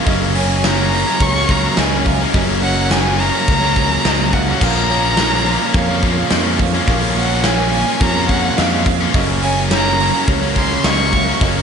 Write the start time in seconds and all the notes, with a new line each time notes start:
0.06 F#1 F#2 C#3 F#3 A#3 C#4 A#4 D#5, kick, open hi-hat
0.21 F#3 A#3 C#4
0.35 C#3 F#3 A#3 C#4 C#5 G#5, open hi-hat
0.49 F#3 A#3 C#4
0.63 F#2 C#3 F#3 A#3 C#4 C#5 A#5, snare, open hi-hat
0.79 F#3 A#3 C#4
0.92 C#3 F#3 A#3 C#4, open hi-hat
1.07 F#3 A#3 C#4
1.20 C#2 C#5 C#6, kick, open hi-hat
1.35 F#3 A#3 C#4
1.49 C#3 F#3 A#3 C#4 A#5, kick, open hi-hat
1.77 C#2 F#2 C#3 F#3 A#3 C#4 D#5 G#5, snare, open hi-hat
1.91 F#3 A#3 C#4
2.05 C#3 F#3 A#3 C#4 F5, muted distorted electric guitar stroke, kick, open hi-hat
2.20 F#3 A#3 C#4
2.33 F#1 F#2 C#3 F#3 A#3 C#4 D#5, kick, open hi-hat
2.48 F#3 A#3 C#4
2.62 C#3 F#3 A#3 C#4 C#5 F#5, open hi-hat
2.77 F#3 A#3 C#4
2.90 F#2 C#3 F#3 A#3 C#4 C#5 G#5, snare, open hi-hat
3.05 F#3 A#3 C#4
3.18 C#3 F#3 A#3 C#4 A#5, open hi-hat
3.33 F#3 A#3 C#4
3.48 C#2 C#5, kick, open hi-hat
3.61 F#3 A#3 C#4
3.76 C#3 F#3 A#3 C#4, kick, open hi-hat
4.04 C#2 F#2 C#3 F#3 A#3 C#4 D#5, snare, open hi-hat
4.19 F#3 A#3 C#4
4.32 C#3 F#3 A#3 C#4 F5 F#5, muted distorted electric guitar stroke, kick, open hi-hat
4.47 F#3 A#3 C#4
4.60 A#1 A#2 F3 A#3 C#4 F4 C#5 F5 A#5, kick, crash
4.75 F3 A#3 C#4
4.89 A#2 F3 A#3 C#4 C#5, open hi-hat
5.03 F3 A#3 C#4
5.17 A#2 F3 A#3 C#4 C#5, snare, open hi-hat
5.32 F3 A#3 C#4
5.45 A#2 F3 A#3 C#4, open hi-hat
5.60 F3 A#3 C#4
5.74 F2 C#5 F5, kick, open hi-hat
5.88 F3 A#3 C#4
6.02 A#2 F3 A#3 C#4, kick, open hi-hat
6.30 F2 A#2 F3 A#3 C#4 D#5, snare, open hi-hat
6.45 F3 A#3 C#4
6.59 A#2 F3 A#3 C#4 F5, muted distorted electric guitar stroke, kick, open hi-hat
6.72 F3 A#3 C#4
6.87 A#1 A#2 F3 A#3 C#4 F5, kick, open hi-hat
7.01 F3 A#3 C#4
7.16 A#2 F3 A#3 C#4 C#5 F#5, open hi-hat
7.30 F3 A#3 C#4
7.44 A#2 F3 A#3 C#4 C#5 G#5, snare, open hi-hat
7.58 F3 A#3 C#4
7.72 A#2 F3 A#3 C#4, open hi-hat
7.86 F3 A#3 C#4
8.01 F2 C#5 A#5, kick, open hi-hat
8.14 F3 A#3 C#4
8.28 A#2 F3 A#3 C#4 F#5, kick, open hi-hat
8.56 F2 A#2 F3 A#3 C#4 D#5 F5, snare, open hi-hat
8.73 F3 A#3 C#4
8.85 A#2 F3 A#3 C#4 F5, muted distorted electric guitar stroke, kick, open hi-hat
8.99 F3 A#3 C#4
9.14 F#1 F#2 C#3 F#3 A#3 C#4 A#4 D#5, kick, open hi-hat
9.28 F#3 A#3 C#4
9.41 C#3 F#3 A#3 C#4 C#5 G#5, open hi-hat
9.56 F#3 A#3 C#4
9.69 F#2 C#3 F#3 A#3 C#4 C#5 A#5, snare, open hi-hat
9.86 F#3 A#3 C#4
9.99 C#3 F#3 A#3 C#4, open hi-hat
10.13 F#3 A#3 C#4
10.28 C#2 C#5, kick, open hi-hat
10.41 F#3 A#3 C#4
10.55 C#3 F#3 A#3 C#4 C6, kick, open hi-hat
10.84 C#2 F#2 C#3 F#3 A#3 C#4 D#5 C#6, snare, open hi-hat
10.99 F#3 A#3 C#4
11.13 C#3 F#3 A#3 C#4 F5, muted distorted electric guitar stroke, kick, open hi-hat
11.27 F#3 A#3 C#4
11.41 F#1 F#2 C#3 F#3 A#3 C#4 D#5, kick, open hi-hat
11.56 A#3 C#4